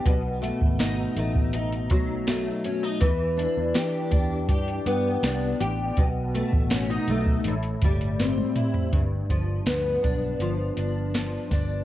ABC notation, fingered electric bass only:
X:1
M:4/4
L:1/16
Q:1/4=81
K:Gmix
V:1 name="Fingered electric bass" clef=bass
B,,,3 ^G,,,3 A,,,4 B,,,4 z2 | E,,3 E,, E,2 E,,2 G,,2 G,,2 C,,2 A,,,2 | B,,,3 A,,,3 B,,,2 A,,,2 G,,,4 z2 | G,,,2 G,,,2 D,,2 B,,,2 G,,,2 G,,,4 G,,,2 |]